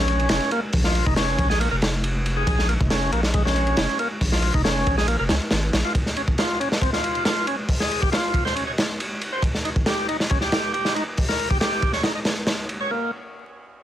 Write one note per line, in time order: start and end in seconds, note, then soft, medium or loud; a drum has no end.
0.00 0.27 A#1 medium
0.00 0.29 C#4 medium
0.08 ride medium
0.19 ride soft
0.29 0.39 F1 medium
0.29 0.51 C#4 medium
0.29 snare loud
0.29 ride medium
0.40 ride soft
0.51 0.60 A#3 loud
0.51 ride medium
0.73 1.04 A#1 medium
0.73 kick loud
0.73 open hi-hat medium
0.84 1.05 F4 medium
0.84 snare soft
0.95 ride medium
1.06 1.36 F1 medium
1.06 1.14 D#4 medium
1.06 kick medium
1.16 1.48 C#4 loud
1.16 snare loud
1.16 ride medium
1.39 1.69 A#1 medium
1.39 kick medium
1.39 ride medium
1.50 1.59 G#4 medium
1.50 snare soft
1.60 1.69 A#3 loud
1.60 ride medium
1.71 2.45 F1 medium
1.71 1.76 A#4 medium
1.82 snare loud
1.82 ride medium
2.04 ride medium
2.26 ride medium
2.37 2.68 G#4 medium
2.47 2.77 A#1 medium
2.47 kick loud
2.47 ride medium
2.59 snare soft
2.69 2.74 A#3 medium
2.69 ride medium
2.81 3.10 F1 medium
2.81 kick medium
2.90 3.11 C#4 loud
2.90 snare loud
2.90 ride medium
3.12 3.75 A#1 medium
3.12 3.21 A#3 loud
3.12 ride medium
3.23 snare medium
3.34 3.43 G#3 medium
3.34 kick medium
3.34 ride medium
3.45 3.76 C#4 medium
3.45 snare soft
3.56 ride medium
3.67 ride soft
3.77 3.87 F1 medium
3.77 3.98 C#4 medium
3.77 snare loud
3.77 ride medium
3.89 ride soft
3.99 4.08 A#3 loud
3.99 ride medium
4.21 4.51 A#1 loud
4.21 kick loud
4.21 open hi-hat medium
4.32 4.53 F4 medium
4.32 snare soft
4.42 ride medium
4.54 4.84 F1 medium
4.54 4.62 D#4 medium
4.54 kick medium
4.64 4.96 C#4 medium
4.64 snare loud
4.64 ride medium
4.87 5.17 A#1 medium
4.87 kick medium
4.87 ride medium
4.98 5.07 G#4 medium
4.98 snare soft
5.08 5.17 A#3 loud
5.08 ride medium
5.19 5.30 F1 medium
5.19 5.24 A#4 medium
5.29 5.39 C#2 medium
5.29 5.35 C#4 loud
5.29 snare medium
5.29 ride medium
5.51 5.70 G#1 loud
5.51 snare loud
5.51 ride medium
5.73 5.83 A#1 medium
5.73 snare medium
5.73 ride medium
5.85 5.93 F4 medium
5.95 kick medium
5.95 ride medium
6.06 snare soft
6.16 6.22 C#4 medium
6.16 ride medium
6.28 kick medium
6.38 6.59 F4 loud
6.38 snare loud
6.38 ride medium
6.60 6.69 C#4 medium
6.60 ride medium
6.72 snare medium
6.82 6.91 C4 medium
6.82 kick loud
6.82 ride medium
6.93 7.24 F4 medium
6.93 snare soft
7.04 ride medium
7.15 ride soft
7.25 7.46 F4 medium
7.25 snare loud
7.25 ride medium
7.36 ride soft
7.47 7.56 C#4 loud
7.47 ride medium
7.69 kick loud
7.69 open hi-hat medium
7.80 8.01 G#4 medium
7.80 snare soft
7.91 ride medium
8.02 8.10 G4 medium
8.02 kick medium
8.12 8.44 F4 medium
8.12 snare loud
8.12 ride medium
8.34 kick loud
8.34 ride medium
8.45 8.55 C5 medium
8.45 snare soft
8.55 8.64 C#4 medium
8.55 ride medium
8.67 8.72 C#5 medium
8.78 snare loud
8.78 ride medium
9.00 ride medium
9.21 ride medium
9.32 9.43 C5 medium
9.42 kick loud
9.42 ride medium
9.54 snare soft
9.65 9.70 D#4 medium
9.65 ride medium
9.76 kick medium
9.86 10.07 G4 loud
9.86 snare loud
9.86 ride medium
10.08 10.17 D#4 medium
10.08 ride medium
10.20 snare medium
10.30 10.39 C#4 medium
10.30 kick loud
10.30 ride medium
10.41 10.72 G4 medium
10.41 snare soft
10.52 snare loud
10.52 ride medium
10.74 10.94 G4 medium
10.74 ride medium
10.85 snare soft
10.95 11.04 D#4 loud
10.95 ride medium
11.17 kick loud
11.17 open hi-hat medium
11.28 11.49 A#4 medium
11.28 snare soft
11.39 ride medium
11.50 11.58 G4 medium
11.50 kick medium
11.60 11.92 G4 medium
11.60 snare loud
11.60 ride medium
11.82 kick medium
11.82 ride medium
11.93 12.03 C#5 medium
11.93 snare soft
12.03 12.12 D#4 medium
12.03 snare medium
12.03 ride medium
12.15 12.20 D#5 medium
12.25 snare loud
12.25 ride medium
12.47 snare loud
12.47 ride medium
12.69 ride medium
12.80 12.91 C#5 medium
12.91 13.11 A#3 medium